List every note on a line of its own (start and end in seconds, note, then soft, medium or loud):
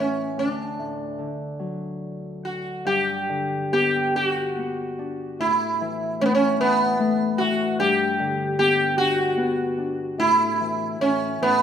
0.00 0.44 A2 soft
0.00 0.44 E3 soft
0.00 3.31 A3 soft
0.00 0.36 C#4 medium
0.38 2.91 D2 soft
0.38 1.25 D4 medium
0.79 1.24 A2 soft
1.19 2.91 D3 soft
1.59 2.91 F#3 soft
2.45 2.86 F#4 soft
2.85 5.45 G2 medium
2.85 3.72 G4 medium
3.29 5.45 D3 soft
3.72 4.58 B3 soft
3.72 4.12 G4 medium
4.15 4.98 D4 soft
4.15 4.27 G4 medium
4.27 5.44 F#4 medium
4.58 7.69 B3 soft
4.99 7.79 D4 soft
5.40 7.84 A2 soft
5.40 6.21 E4 medium
5.81 6.59 E3 soft
6.21 6.99 A3 soft
6.21 6.25 C#4 medium
6.26 6.33 B3 medium
6.35 6.58 C#4 medium
6.60 7.39 E3 soft
6.60 7.42 B3 medium
6.99 10.32 A3 medium
7.38 7.84 E3 soft
7.38 7.79 F#4 medium
7.79 10.23 G2 medium
7.79 8.58 G4 medium
8.20 10.23 D3 soft
8.59 9.37 B3 soft
8.59 8.97 G4 medium
8.98 9.77 D4 soft
8.98 10.21 F#4 medium
9.37 11.62 B3 soft
9.78 11.62 D4 soft
10.18 10.99 A2 medium
10.18 11.01 E4 medium
10.61 11.46 E3 soft
11.01 11.40 A2 soft
11.01 11.42 C#4 medium
11.42 11.62 A2 soft
11.42 11.62 B3 medium